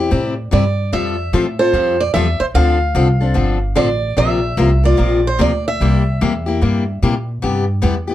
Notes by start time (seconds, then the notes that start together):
Already playing: E2 G4
0.00 E4
0.11 A2 C3 G3 C4 E4 G4
0.51 G2 C3 G3 C4 E4 G4 D5
0.92 F2 F3 G3 C4 F4 A4 E5
1.33 A2 F3 G3 C4 F4 A4
1.59 C4 F4 A4 C5
1.73 F2 F3 G3 C4 F4 A4
2.00 D5
2.14 E2 F3 G3 C4 F4 A4 E5
2.40 C5, muted upright bass stroke
2.54 D2 D3 F3 C4 D4 A4 F5
2.95 C2 D3 F3 C4 D4 A4
3.21 C4 D4 A4
3.34 G1 D3 F3 C4 D4 A4
3.75 A1 D3 F3 C4 D4 A4 D5
4.17 A#1 C3 F3 A#3 F4 A#4 E5
4.57 C2 C3 F3 A#3 F4 A#4
4.84 A#3 F4 A#4 D5
4.97 A#1 C3 F3 A#3 F4 A#4
5.27 C5
5.39 D2 C3 F3 A#3 F4 A#4 D5
5.68 E5
5.80 C2 C3 G3 A#3 E4 G4
6.21 E2 C3 G3 A#3 E4 G4
6.46 A#3 E4 G4
6.61 G2 C3 G3 A#3 E4 G4
7.02 A#2 C3 G3 A#3 E4 G4
7.42 G2 C3 G3 B3 E4 G4
7.82 E2 C3 G3 B3 E4 G4
8.07 B3 E4 G4